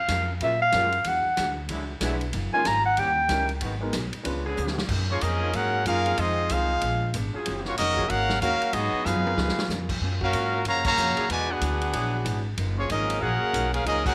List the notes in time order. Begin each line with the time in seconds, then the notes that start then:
Already playing: F5
0.08 F2 F#3 C#4 F4 A#4, snare, hi-hat pedal, ride
0.40 A#2 C#3 F#3 A#3 C#4 F4 A#4 E5, ride
0.62 F5
0.72 F#2 C#3 F#3 G#3 A#3 C#4 F4 F#4 A#4, snare, hi-hat pedal, ride
0.92 ride
1.04 E2 E3 G#3 D4 F#4 F#5, ride
1.25 muted upright bass stroke
1.37 D2 E3 G#3 D4 F#4, snare, hi-hat pedal, ride
1.69 C#2 D3 E3 F#3 G#3 D4 E4 F#4, ride
2.00 B1 D3 E3 F#3 G#3 D4 E4 F#4 B4, snare, hi-hat pedal, ride
2.21 ride
2.33 F#1 F#3 A#3 D#4 F4, ride
2.52 D#3 G#3 A#3 C#4 D#4 F4 A#4 G#5, muted upright bass stroke
2.64 G#1 F#3 A#3 D#4 F4 A#5, snare, hi-hat pedal, ride
2.86 F#5
2.97 D#2 D#3 G3 C#4 E4 G4 G5, ride
3.29 C#2 D#3 G3 C#4 D#4 E4 A#4, snare, hi-hat pedal, ride
3.49 ride
3.61 G#1 G#2 D#3 F#3 G#3 B3 D#4 F#4, ride
3.81 G#3 B3 D#4 F#4 A#4
3.93 B1 G#2 F#3 B3 D#4, snare, hi-hat pedal, ride
4.13 ride
4.23 C#2 C#3 F3 G#3 B3 C#4 D4 F4 B4, ride
4.44 D3 B3 C#4 G#4
4.57 D2 C#3 F3 B3 D4, hi-hat pedal
4.67 snare
4.78 snare
4.89 F#2 F3 A#3 D#4, kick, crash
5.08 F3 A#3 C#4 F4 G#4 C#5
5.21 F2 F#2 F3 A#3 C#4 D#4 G#4 A#4 D#5, hi-hat pedal, ride
5.40 F3 A#3 D#4 G#4
5.53 F#2 G#2 F3 A#3 C#4 D#4 F#4 G#4 A#4 F#5, ride
5.85 F#2 F3 A#3 C#4 D#4 F4 G#4 A#4 F5, hi-hat pedal, ride
6.05 F3 C4 D#4 G#4, ride
6.17 F2 D#3 G#3 C4 D#4 F4 G#4 D#5, ride
6.49 C2 F2 D#3 G#3 C4 D#4 F4 G#4 C5 F5, hi-hat pedal, ride
6.81 A#1 A#2 G#3 B3 D4, ride
7.14 G#1 A#2 G#3 B3 D4, hi-hat pedal, ride
7.33 F#3 C#4 F4 G#4, muted upright bass stroke
7.46 F#1 D#3 G#3 C#4 F#4, ride
7.65 F#3 A#3 C#4 F4 F#4 C#5, snare
7.76 F1 D#3 F#3 G#3 A#3 C#4 D#4 F#4 A#4 D#5, snare, hi-hat pedal, ride
7.95 F#3 C#4 F4 G#4, kick
8.07 G#1 D#3 G#3 A#3 C#4 F#4 A#4 F5 F#5, ride
8.12 F#4
8.29 snare
8.40 D#2 D#3 G#3 A#3 C#4 F#4 A#4 F5, hi-hat pedal, ride
8.62 ride
8.72 G#2 F#3 B3 D#4 F#4 G#4 D#5, ride
8.93 muted upright bass stroke
9.04 F#2 G#2 F#3 B3 D#4 F4 G#4 B4 F5, snare, hi-hat pedal
9.16 high tom
9.24 F3 B3 D#4 A#4, high tom
9.36 C#2 C#3 B3 F4, snare
9.40 A#4
9.49 snare
9.59 snare
9.68 F2 C#3 B3 F4 A#4, snare, hi-hat pedal
9.89 kick, crash
10.01 F#2 F#3 A#3 C#4 F4
10.20 A#3 C#4 F#4 A#4 F5, kick
10.33 G#2 F#3 A#3 C#4 F4, hi-hat pedal, ride
10.53 F#3 C#4 F4 A#4
10.64 F#2 C#3 F3 F#3 A#3 C#4 F4 F#4 C#5 F5 A#5, ride
10.84 C#3 F#3 A#3 F#4 C#5 F5 A#5, kick, crash
10.97 F2 F#3 A#3 C#4 F4, hi-hat pedal
11.15 F#3 D4 E4 G#4, muted upright bass stroke, ride
11.29 E2 B2 D3 E3 G#3 D4 F#4 B4 D5 G#5, ride
11.49 B3 D4 F#4 G#4 B4 F#5
11.60 D2 E3 G#3 D4 F#4, hi-hat pedal, ride
11.81 ride
11.92 A#1 E3 F#3 G#3 D4 E4 F#4 G#4, ride
12.25 G#1 E3 G#3 D4 F#4, hi-hat pedal, ride
12.57 F#1 F#2 F3 A#3 D#4, ride
12.76 F3 A#3 C#4 F4 G#4 C#5
12.88 G#1 F#2 F3 A#3 C#4 D#4 G#4 A#4 D#5, hi-hat pedal, ride
13.10 ride
13.19 A#1 F#2 F3 F#3 A#3 C#4 D#4 F#4 G#4 A#4 F#5
13.23 D#4
13.42 muted upright bass stroke
13.53 B1 F#2 F3 A#3 D#4, hi-hat pedal, ride
13.70 A#3 C#4 F4 G#4 A#4 F5, ride
13.83 C#2 F#2 F3 A#3 C#4 D#4 G#4 A#4 D#5, ride
13.88 A#3 D#4
14.02 A#3 C#4 F#4, kick
14.06 C#4 G#4 A#4 F#5, crash